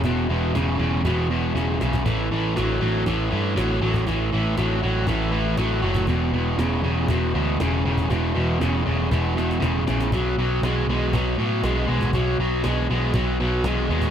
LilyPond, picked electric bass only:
\new Staff \with { instrumentName = "Picked electric bass" } { \clef bass \time 4/4 \key e \major \tempo 4 = 119 e,,8 e,,8 e,,8 e,,8 e,,4 e,,8 b,,8 | a,,8 a,,8 a,,8 a,,8 a,,8 g,8 a,,8 a,,8 | a,,8 a,,8 a,,8 a,,8 a,,4 a,,8 fis,,8 | e,,8 e,,8 e,,8 e,,8 e,,8 d,8 e,,8 e,,8 |
e,,8 e,,8 e,,8 e,,8 e,,4 e,,8 ais,,8 | b,,8 b,,8 b,,8 b,,8 b,,8 a,8 b,,8 b,,8 | b,,8 b,,8 b,,8 b,,8 b,,4 b,,8 dis,8 | }